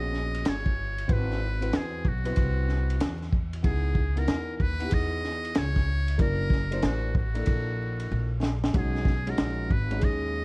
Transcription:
0.00 0.42 A#1 medium
0.00 0.62 B3 medium
0.00 0.62 C#4 medium
0.00 0.63 F#4 medium
0.00 0.63 G#4 medium
0.00 0.50 D#5 loud
0.13 snare soft
0.34 ride medium
0.45 1.06 G1 medium
0.45 1.14 C#5 medium
0.45 snare loud
0.45 hi-hat pedal medium
0.45 ride medium
0.66 kick medium
0.98 ride medium
1.08 1.70 G#1 medium
1.08 1.44 C4 medium
1.08 1.45 E4 medium
1.08 1.45 F#4 medium
1.08 1.45 B4 medium
1.08 kick loud
1.08 ride medium
1.12 1.78 B4 loud
1.31 snare soft
1.61 2.03 C4 medium
1.61 2.04 E4 medium
1.61 2.04 F#4 medium
1.61 2.04 B4 medium
1.61 ride medium
1.73 2.04 E2 medium
1.73 2.10 G#4 medium
1.73 snare loud
1.73 hi-hat pedal soft
1.73 ride medium
2.05 2.35 B1 medium
2.05 3.34 F#4 medium
2.05 kick medium
2.24 2.29 B3 medium
2.24 3.17 E4 medium
2.24 3.18 F#4 medium
2.24 3.18 B4 medium
2.24 ride medium
2.30 3.20 C4 medium
2.36 2.98 C2 medium
2.36 kick medium
2.36 ride medium
2.68 snare soft
2.90 ride medium
3.00 3.61 E2 medium
3.00 snare loud
3.00 hi-hat pedal medium
3.00 ride medium
3.21 snare soft
3.33 kick medium
3.53 ride medium
3.63 4.25 C#2 loud
3.63 3.99 B3 medium
3.63 4.00 D#4 medium
3.63 4.00 E4 medium
3.63 4.20 G#4 medium
3.63 4.01 G#4 medium
3.63 kick loud
3.63 ride medium
3.95 kick medium
4.16 4.58 B3 medium
4.16 4.59 D#4 medium
4.16 4.59 E4 medium
4.16 4.59 A#4 medium
4.16 4.57 A#4 medium
4.16 ride medium
4.28 4.58 E2 medium
4.28 snare loud
4.28 hi-hat pedal soft
4.28 ride medium
4.57 4.90 D#2 medium
4.57 4.63 A#4 medium
4.57 kick medium
4.62 4.95 B4 loud
4.80 5.73 B3 medium
4.80 5.73 D#4 medium
4.80 5.73 E4 medium
4.80 4.86 G4 medium
4.80 ride medium
4.88 5.77 G#4 medium
4.88 kick medium
4.88 ride medium
4.93 5.53 E2 medium
4.93 5.59 D#5 loud
5.24 snare soft
5.45 ride medium
5.55 6.17 C#2 medium
5.55 6.21 C#5 loud
5.55 snare loud
5.55 hi-hat pedal medium
5.55 ride medium
5.76 kick medium
5.76 snare soft
6.08 ride medium
6.18 6.80 F#1 loud
6.18 6.55 A#3 medium
6.18 6.55 D4 medium
6.18 6.55 E4 medium
6.18 6.56 A#4 medium
6.18 6.87 A#4 loud
6.18 kick loud
6.18 ride medium
6.50 kick medium
6.50 snare soft
6.71 7.14 A#3 medium
6.71 7.14 D4 medium
6.71 7.14 E4 medium
6.71 7.15 C5 medium
6.71 ride medium
6.82 7.44 A1 medium
6.82 7.16 F#4 medium
6.82 snare loud
6.82 hi-hat pedal soft
6.82 ride medium
7.15 8.40 F#4 medium
7.15 kick medium
7.34 8.28 A#3 medium
7.34 8.28 D4 medium
7.34 8.28 E4 medium
7.34 8.29 A4 medium
7.34 ride medium
7.46 8.08 A#1 medium
7.46 kick medium
7.46 ride medium
8.00 ride medium
8.11 8.72 A#1 medium
8.43 snare medium
8.64 snare medium
8.73 9.35 B1 loud
8.73 9.10 G#3 medium
8.73 9.10 C#4 medium
8.73 9.11 D#4 medium
8.73 9.11 F#4 medium
8.73 9.31 G#4 medium
8.73 kick loud
8.73 ride medium
8.95 snare soft
9.05 kick medium
9.05 snare soft
9.27 9.69 G#3 medium
9.27 9.69 C#4 medium
9.27 9.70 D#4 medium
9.27 9.70 F#4 medium
9.27 9.74 A#4 loud
9.27 ride medium
9.38 9.69 A#1 medium
9.38 snare loud
9.38 hi-hat pedal soft
9.38 ride medium
9.70 10.01 G#1 loud
9.70 10.06 B4 medium
9.70 kick medium
9.91 10.45 G#3 medium
9.91 10.45 C#4 medium
9.91 10.45 D#4 medium
9.91 9.97 F#4 medium
9.91 ride medium
9.99 10.45 D#2 medium
9.99 10.45 G#4 medium
9.99 kick medium
9.99 ride medium
10.04 10.45 D#5 loud

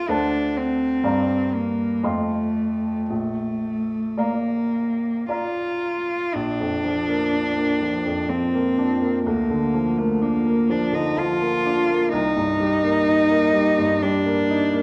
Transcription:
0.00 0.11 F4 medium
0.00 0.12 A#4 soft
0.00 0.12 F5 soft
0.00 0.12 A#5 soft
0.09 1.01 D2 soft
0.09 0.59 D4 medium
0.09 1.00 C5 soft
0.09 1.00 F#5 soft
0.09 1.01 A5 soft
0.57 1.55 C4 soft
1.04 2.01 G2 soft
1.04 2.00 D5 soft
1.04 2.00 F5 soft
1.04 2.01 A#5 soft
1.54 2.06 A#3 soft
2.03 3.06 F2 soft
2.03 3.10 A3 soft
2.03 3.06 D#5 soft
2.03 3.06 F5 soft
2.03 3.06 C6 soft
3.10 4.14 A#1 soft
3.10 4.20 A3 soft
4.18 5.29 A#3 soft
4.18 5.25 D5 soft
4.18 5.25 F5 soft
4.18 5.26 A#5 soft
5.29 6.36 F4 soft
5.29 6.31 D5 soft
5.29 6.31 F5 soft
5.29 6.31 A#5 soft
6.34 9.22 A#1 soft
6.34 8.31 D4 medium
6.60 6.99 F2 soft
6.85 7.23 F3 soft
7.09 7.47 A#3 soft
7.33 7.71 D4 soft
7.56 7.95 A#3 soft
7.82 8.20 F3 soft
8.05 8.44 F2 soft
8.29 8.67 F3 soft
8.29 9.25 C4 soft
8.54 8.92 A#3 soft
8.78 9.16 D4 soft
9.02 9.26 A#3 soft
9.26 12.09 D2 soft
9.26 9.99 A#3 soft
9.50 9.88 D3 soft
9.74 10.12 F3 soft
9.98 10.23 A3 soft
9.98 10.36 A#3 soft
10.21 10.72 A#3 soft
10.21 10.60 D4 soft
10.45 10.84 A#3 soft
10.69 11.07 F3 soft
10.69 10.96 D4 soft
10.93 11.31 D3 soft
10.93 11.20 D#4 soft
11.17 11.55 F3 soft
11.17 12.13 F4 medium
11.41 11.79 A#3 soft
11.66 12.03 D4 soft
11.89 12.12 A#3 soft
12.13 14.82 C2 soft
12.13 14.04 D#4 medium
12.37 12.74 G2 soft
12.60 12.97 G3 soft
12.83 13.21 A#3 soft
13.07 13.45 D#4 soft
13.31 13.69 A#3 soft
13.53 13.92 G3 soft
13.78 14.17 G2 soft
14.02 14.41 G3 soft
14.02 14.82 D4 medium
14.26 14.64 A#3 soft
14.50 14.82 D#4 soft
14.73 14.82 A#3 soft

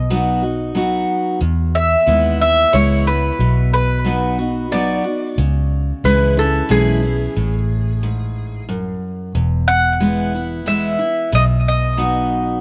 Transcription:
0.00 1.04 B1 medium
0.00 0.70 B2 medium
0.00 0.72 D#5 medium
0.10 0.42 F#3 medium
0.10 0.42 B3 medium
0.10 0.42 D#4 medium
0.10 0.41 F#4 medium
0.42 0.75 D#4 soft
0.42 0.74 F#4 medium
0.75 1.38 F#3 medium
0.75 1.38 B3 medium
0.75 1.39 D#4 medium
0.75 1.39 F#4 medium
1.41 2.67 E2 medium
1.41 1.95 E2 medium
1.75 2.40 E5 loud
2.06 2.64 D#2 medium
2.06 2.39 G#3 medium
2.06 2.39 B3 medium
2.06 2.38 E4 medium
2.39 2.73 B3 soft
2.39 2.72 E4 medium
2.39 2.75 E5 medium
2.73 3.30 C#2 medium
2.73 3.05 E3 medium
2.73 3.05 G#3 medium
2.73 3.06 B3 medium
2.73 3.05 E4 medium
2.73 3.04 C#5 medium
3.06 3.40 B3 soft
3.06 3.39 E4 medium
3.06 3.72 B4 medium
3.39 4.99 B1 medium
3.39 4.66 B2 medium
3.73 5.01 B4 medium
4.04 4.37 F#3 medium
4.04 4.38 B3 medium
4.04 4.38 D#4 medium
4.04 4.37 F#4 loud
4.38 4.72 D#4 soft
4.38 4.70 F#4 medium
4.72 5.04 F#3 medium
4.72 5.04 B3 medium
4.72 5.04 D#4 medium
4.72 5.03 F#4 medium
4.72 5.36 D5 medium
5.04 5.37 D#4 soft
5.04 5.36 F#4 medium
5.38 5.91 C#2 medium
5.38 6.64 C#3 medium
6.04 6.60 C#2 medium
6.04 6.36 E3 medium
6.04 6.36 G#3 medium
6.04 6.37 C#4 medium
6.04 6.36 E4 medium
6.04 6.37 B4 medium
6.37 6.69 C#4 soft
6.37 6.69 E4 medium
6.37 6.70 A4 medium
6.69 7.26 B1 medium
6.69 7.01 E3 medium
6.69 7.02 G#3 medium
6.69 7.02 C#4 medium
6.69 7.01 E4 loud
6.69 8.65 G#4 medium
7.03 7.36 C#4 soft
7.03 7.35 E4 medium
7.36 8.96 A1 medium
7.36 8.62 A2 medium
8.03 8.66 G#2 medium
8.69 9.31 F#2 medium
9.35 10.94 E1 medium
9.35 10.60 E2 medium
9.68 10.70 F#5 loud
10.00 10.32 E3 medium
10.00 10.32 G#3 medium
10.00 10.33 B3 medium
10.00 10.33 E4 loud
10.34 10.66 B3 medium
10.34 10.66 E4 medium
10.66 10.98 E3 medium
10.66 10.99 G#3 medium
10.66 10.99 B3 medium
10.66 10.98 E4 medium
10.66 11.29 E5 medium
10.99 11.32 B3 soft
10.99 11.31 E4 medium
11.32 12.61 B1 medium
11.32 12.58 B2 medium
11.32 11.44 D#5 medium
11.68 12.61 D#5 medium
11.97 12.61 F#3 medium
11.97 12.61 B3 medium
11.97 12.61 D#4 medium
11.97 12.61 F#4 medium

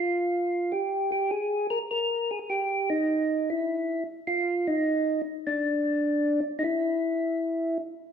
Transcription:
0.00 0.73 F4 loud
0.72 1.11 G4 medium
1.12 1.31 G4 medium
1.31 1.67 G#4 loud
1.70 1.79 A#4 loud
1.91 2.31 A#4 medium
2.31 2.39 G#4 medium
2.50 2.90 G4 medium
2.90 3.50 D#4 loud
3.50 4.04 E4 medium
4.27 4.67 F4 loud
4.67 5.22 D#4 loud
5.47 6.40 D4 loud
6.59 6.63 D#4 medium
6.64 7.78 E4 loud

